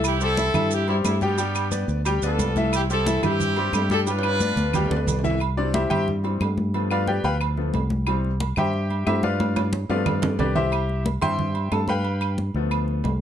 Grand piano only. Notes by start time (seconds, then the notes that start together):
Already playing: E3 E4 E5
0.21 G3 G4 C5
0.38 E3 E4 E5
0.54 E3 E4 E5
0.88 G3 G4 C5
1.22 G3 G4 G5
1.38 G3 G4 G5
1.71 B3 B4 D5
2.06 G3 G4 G5
2.23 B3 B4 D5
2.57 E3 E4 E5
2.90 G3 G4 C5
3.07 E3 E4 E5
3.23 E3 E4 E5
3.57 G3 G4 C5
3.91 G3 G4 G5
4.07 G3 G4 G5
4.41 B3 B4 D5
4.75 G3 G4 G5
4.91 B3 B4 D5
5.24 E3 E4 E5
5.57 E3 G3 C4 D4 D5
5.74 E4 G4 C5 E5
5.90 G4 C5 E5 G5
6.24 E3 G3 C4
6.74 F3 A3 B3
6.91 F4 B4 D5 F5
7.08 G4 B4 D5 G5
7.24 B4 F5 G5 B5
7.58 F3 A3 B3
8.07 E3 G3 C4
8.58 G4 C5 E5 G5
9.07 E4 G4 C5 E5
9.24 F4 B4 D5 F5
9.89 F3 A3 B3 F4 B4 D5 F5
10.40 D4 G4 B4 D5
10.56 E4 G4 C5 E5
11.22 E3 G3 C4 C5 E5 G5 C6
11.72 A4 A5
11.89 B4 F5 G5 B5
12.56 F3 A3 B3